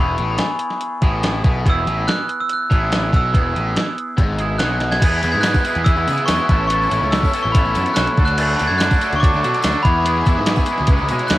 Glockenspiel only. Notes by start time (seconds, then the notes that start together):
Already playing: B5
0.31 B5
0.39 G#5
1.70 E6
2.08 F#6
2.40 E6
2.53 F#6
3.16 E6
4.59 F#6
4.92 G#6
5.32 G#6
5.41 F#6
5.84 E6
6.25 C#6
6.67 C#6
7.11 E6
7.42 C#6
7.52 B5
7.94 F#6
8.25 F#6
8.67 G#6
8.78 F#6
9.16 C#6
9.20 D6
9.83 B5
11.27 F#6